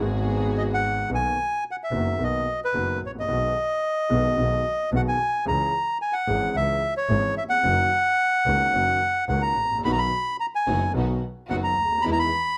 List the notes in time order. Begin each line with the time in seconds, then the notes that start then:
Already playing: D#3
0.00 G#1 G#2 G#3 B3 F#4 G#4
0.57 D#5
0.74 F#5
1.09 B1 B2 D#3 A#3 B3 F#4
1.15 G#5
1.71 F#5
1.84 E5
1.91 F#1 F#2 D#3 A#3 B3 F#4
2.19 B1 B2 D#3 A#3 B3 F#4
2.24 D#5
2.64 B4
2.73 F#1 F#2 D#3 A#3 B3 F#4
3.02 A1
3.06 G#1 C#5
3.15 A1
3.19 A#1 D#5
3.28 B1 B2 D#3 G#3 B3 F#4
4.09 B1 B2 D#3 G#3 B3 F#4
4.37 B1 B2 D#3 G#3 B3 F#4
4.92 B1 B2 D#3 G#3 B3 F#4
4.96 F#5
5.08 G#5
5.45 C#2 C#3 E3 G#3 C#4 G#4 A#5
6.02 G#5
6.13 F#5
6.27 G#1 G#2 E3 G#3 C#4 G#4
6.55 C#2 C#3 E3 G#3 C#4 G#4 E5
6.97 C#5
7.09 G#1 G#2 E3 G#3 C#4 G#4
7.37 E5
7.44 D#2
7.49 E2 F#5
7.57 F2
7.63 F#1 F#2 D#3 F#3 A#3 C#4 F#4
8.46 C#2 C#3 D#3 A#3 C#4 F#4
8.73 F#1 F#2 D#3 F#3 A#3 C#4 F#4
9.28 C#2 C#3 D#3 A#3 C#4 F#4 F#5
9.42 A#5
9.57 A1
9.64 G#1
9.71 A1
9.78 A#1
9.84 B1 B2 D#3 F#3 B3 D#4 F#4 B5
9.92 A#5
9.98 B5
10.40 A#5
10.55 G#5
10.67 F#1 F#2 D#3 F#3 B3 D#4 F#4
10.94 B1 B2 D#3 F#3 B3 D#4 F#4
11.49 F#1 F#2 D#3 F#3 B3 D#4 F#4 F#5
11.64 A#5
11.77 D2
11.84 C#2
11.92 D2
11.98 D#2 B5
12.04 E2 D#3 E3 G#3 B3 D#4 E4
12.12 A#5
12.19 B5